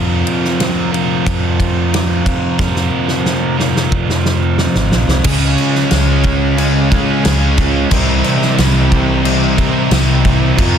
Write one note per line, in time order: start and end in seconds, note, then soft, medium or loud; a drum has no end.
0.00 0.23 F2 loud
0.00 2.23 F2 medium
0.00 2.24 C3 medium
0.00 0.93 F3 medium
0.00 2.25 F3 loud
0.00 0.93 C4 medium
0.00 3.09 C4 medium
0.00 0.92 F4 loud
0.00 0.91 A#4 medium
0.27 ride medium
0.45 snare soft
0.60 snare loud
0.60 ride medium
0.91 2.58 F3 medium
0.91 2.57 C4 medium
0.91 2.59 F4 medium
0.91 2.56 A#4 medium
0.91 ride medium
1.27 2.45 F2 loud
1.27 kick loud
1.27 ride medium
1.60 kick medium
1.60 ride medium
1.94 snare loud
1.94 ride loud
2.25 2.57 F2 medium
2.25 2.57 C3 medium
2.25 2.61 F3 medium
2.25 kick medium
2.25 ride medium
2.58 4.89 F2 medium
2.58 2.89 F2 medium
2.58 4.90 C3 medium
2.58 3.56 F3 medium
2.58 4.90 F3 loud
2.58 3.57 C4 medium
2.58 3.57 F4 medium
2.58 3.56 A#4 medium
2.58 kick loud
2.58 snare medium
2.76 snare medium
3.08 snare medium
3.26 snare medium
3.57 5.23 F3 medium
3.57 5.23 C4 medium
3.57 5.23 F4 medium
3.57 5.22 A#4 medium
3.57 snare medium
3.76 snare medium
3.92 4.66 F2 loud
3.92 kick loud
4.10 snare medium
4.26 snare medium
4.58 snare medium
4.75 4.90 G#1 medium
4.75 snare medium
4.91 5.07 A#1 medium
4.91 5.24 F2 medium
4.91 5.24 C3 medium
4.91 5.23 F3 medium
4.91 snare loud
5.08 5.23 C2 medium
5.08 snare medium
5.24 5.55 C#2 loud
5.24 7.89 C#3 loud
5.24 6.90 C#3 medium
5.24 6.90 G#3 medium
5.24 7.90 G#3 medium
5.24 6.90 C#4 medium
5.24 7.91 C#4 medium
5.24 6.89 F4 loud
5.24 6.89 G#4 loud
5.24 kick loud
5.24 crash loud
5.24 crash medium
5.58 crash medium
5.75 snare soft
5.91 7.10 C#2 medium
5.91 snare loud
5.91 tambourine medium
5.91 crash loud
6.23 kick medium
6.23 crash soft
6.57 7.89 C#3 medium
6.57 7.90 G#3 medium
6.57 7.90 C#4 medium
6.57 crash medium
6.90 7.22 C#3 medium
6.90 7.22 G#3 medium
6.90 7.23 C#4 medium
6.90 7.22 F4 medium
6.90 7.22 G#4 medium
6.90 kick loud
6.90 crash medium
7.24 7.85 C#2 medium
7.24 7.89 C#3 medium
7.24 7.89 G#3 medium
7.24 7.89 C#4 medium
7.24 7.90 F4 loud
7.24 7.90 G#4 medium
7.24 snare loud
7.24 tambourine medium
7.24 crash medium
7.58 kick medium
7.58 crash medium
7.90 8.21 C2 medium
7.90 9.56 C3 medium
7.90 10.56 C3 medium
7.90 9.56 E3 loud
7.90 9.56 G3 medium
7.90 10.57 G3 medium
7.90 9.58 C4 medium
7.90 10.78 C4 loud
7.90 9.56 E4 medium
7.90 9.57 A#4 loud
7.90 kick loud
7.90 crash loud
8.24 crash medium
8.42 snare soft
8.58 9.77 C2 loud
8.58 snare loud
8.58 tambourine medium
8.58 crash medium
8.92 kick medium
8.92 crash medium
9.23 10.56 C3 medium
9.23 10.57 G3 medium
9.23 10.78 C4 medium
9.23 crash medium
9.58 9.89 C3 medium
9.58 9.90 E3 medium
9.58 9.90 G3 medium
9.58 9.92 C4 medium
9.58 9.90 E4 medium
9.58 9.92 A#4 medium
9.58 kick medium
9.58 crash medium
9.90 10.51 C2 loud
9.90 10.56 C3 medium
9.90 10.56 E3 medium
9.90 10.56 G3 medium
9.90 10.58 C4 loud
9.90 10.57 E4 loud
9.90 10.59 A#4 medium
9.90 snare loud
9.90 tambourine medium
9.90 crash medium
10.25 kick loud
10.25 crash medium
10.58 10.78 F2 medium
10.58 10.78 C3 medium
10.58 10.78 F3 medium
10.58 10.78 F3 loud
10.58 10.78 C4 medium
10.58 10.78 F4 medium
10.58 10.78 A#4 loud
10.58 kick loud
10.58 crash medium